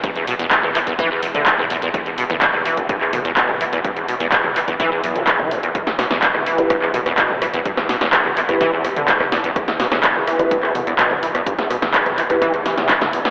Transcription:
<<
  \new Staff \with { instrumentName = "Grand piano" } { \time 4/4 \key e \minor \tempo 4 = 126 r1 | r1 | r1 | r4. r16 <e' g' b'>16 r2 |
r4. r16 <e' g' b'>16 r2 | r4. r16 <e' g' b'>16 r2 | r4. r16 <e' g' b'>16 r2 | }
  \new Staff \with { instrumentName = "Acid bass" } { \clef bass \time 4/4 \key e \minor g,16 e,16 b,16 e,16 e,16 e,16 e16 e,16 e16 e,16 e,16 d16 e,16 e,16 e,16 e,16 | e,16 e,16 b,16 e,16 b,16 e,16 e16 e,16 g,16 e,16 b,16 e,16 b,16 e,16 e16 e,16 | g,16 e,16 b,16 e,16 e,16 e,16 e16 e,16 e16 e,16 e,16 g16 e,16 e16 g,16 e,16 | e,16 e,16 b,16 e,16 b,16 e,16 e16 e,16 g,16 e,16 b,16 e,16 b,16 e,16 e16 e,16 |
g,16 e,16 b,16 e,16 e,16 e,16 e16 e,16 e16 e,16 e,16 d16 e,16 e,16 e,16 e,16 | e,16 e,16 b,16 e,16 b,16 e,16 e16 e,16 g,16 e,16 b,16 e,16 b,16 e,16 e16 e,16 | g,16 e,16 b,16 e,16 e,16 e,16 e16 e,16 e16 e,16 e16 e,16 e16 d16 e,16 e,16 | }
  \new Staff \with { instrumentName = "Sub bass" } { \clef bass \time 4/4 \key e \minor e,,8. e,,8. r16 e,,16 r8 e,,8. d,,8. | e,,8. e,,8. r16 e,,16 r8 e,,8. d,,8. | e,,8. e,,8. r16 e,,16 r8 b,,16 r8 b,,16 r8 | e,,8. e,,8. r16 e,,16 r8 e,,8. d,,8. |
e,,8. e,,8. r16 e,,16 r8 e,,8. d,,8. | e,,8. e,,8. r16 e,,16 r8 e,,8. d,,8. | e,,8. e,,8. r16 e,,16 r8 e,,8. d,,16 r8 | }
  \new DrumStaff \with { instrumentName = "Drums" } \drummode { \time 4/4 <hh bd>16 hh16 hho16 hh16 <hc hh bd>16 toml16 <hc hho>16 <hh bd>16 <hh bd>8 hho16 <hh toml>16 <hc hh bd>16 toml16 hho16 hh16 | <hh bd>16 hh16 hho16 <hh toml>16 <hc hh bd>16 toml16 hho16 <hh bd>16 <hh bd>16 hc16 <hho toml>16 hh16 <hc hh bd>16 toml16 hho16 hh16 | <hh bd>16 hh16 hho16 hh16 <hc hh bd>16 toml16 <hc hho>16 <hh bd>16 <hh bd>8 hho16 <hh toml>16 <hc hh bd>16 toml16 hho16 hh16 | <hh bd>16 <hh sn>16 <hho ss sn>16 <hh sn toml>16 <hc hh bd>16 <ss toml>16 hho16 <hh bd>16 <hh bd ss>16 hc16 <hho toml>16 <hh ss>16 <hc hh bd>16 toml16 <hho ss>16 hh16 |
<hh bd>16 <hh ss sn>16 <hho sn>16 <hh sn>16 <hc hh bd ss>16 toml16 <hc hho>16 <hh bd ss>16 <hh bd>8 <hho ss>16 <hh toml>16 <hc hh bd>16 <ss toml>16 <hho sn>16 hh16 | <hh bd ss>16 <hh sn>16 <hho sn>16 <hh ss sn toml>16 <hc hh bd>16 toml16 <hho ss>16 <hh bd>16 <hh bd>16 <hc ss>16 <hho toml>16 hh16 <hc hh bd ss>16 toml16 hho16 <hh ss>16 | <hh bd>16 <hh sn>16 <hho ss>16 <hh sn toml>16 <hc hh bd>16 <hh ss toml>16 <hc hho>16 <hh bd>16 <hh bd ss>16 hh16 <hho sn>16 <hh sn toml>16 <hc hh bd sn>16 <hh sn toml>16 hho16 <hh sn>16 | }
>>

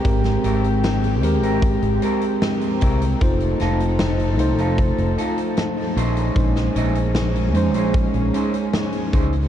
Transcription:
<<
  \new Staff \with { instrumentName = "Clean electric guitar" } { \time 4/4 \key aes \major \tempo 4 = 76 r8 <c' g' bes'>16 r4 <c' g' bes'>16 r8 <c' g' bes'>16 r8. <c' g' bes'>16 r16 | r8 <ees' f' a'>16 r4 <ees' f' a'>16 r8 <ees' f' a'>16 r8. <des' ees' aes' c''>8~ | <des' ees' aes' c''>16 r16 <des' ees' aes' ees''>16 r4 <des' ees' aes' c''>16 r8 <des' ees' aes' c''>16 r8. <des' ees' aes' c''>16 r16 | }
  \new Staff \with { instrumentName = "Tine electric piano" } { \time 4/4 \key aes \major <aes c' g' bes'>4. <aes c' g' bes'>2~ <aes c' g' bes'>8 | <a ees' f' c''>4. <a ees' f' c''>2 r8 | <aes des' ees' c''>4. <aes des' ees' c''>2~ <aes des' ees' c''>8 | }
  \new Staff \with { instrumentName = "String section" } { \time 4/4 \key aes \major <aes c' g'>1 | <f ees' a'>2.~ <f ees' a'>8 <aes bes des'>8~ | <aes bes des'>1 | }
  \new Staff \with { instrumentName = "Fingered electric bass" } { \clef bass \time 4/4 \key aes \major aes,,8 aes,,4 ees,16 aes,,8 aes,,16 r4 c,8 | f,,8 f,,4 c,16 f,,8 f,,16 r4 bes,,8 | bes,,8 bes,,4 f,16 bes,,8 bes,,16 r4 des,8 | }
  \new DrumStaff \with { instrumentName = "Drums" } \drummode { \time 4/4 <hh bd>16 <hh sn>16 hh16 hh16 <hh sn>16 hh16 hh16 hh16 <hh bd>16 hh16 hh16 hh16 <hh sn>16 hh16 <hh bd>16 hh16 | <hh bd>16 hh16 <hh sn>16 hh16 <hh sn>16 hh16 hh16 hh16 <hh bd>16 hh16 hh16 hh16 <hh sn>16 hh16 hh16 hh16 | <hh bd>16 <hh sn>16 hh16 hh16 <hh sn>16 hh16 hh16 hh16 <hh bd>16 hh16 hh16 hh16 <hh sn>16 hh16 <hh bd>16 hh16 | }
>>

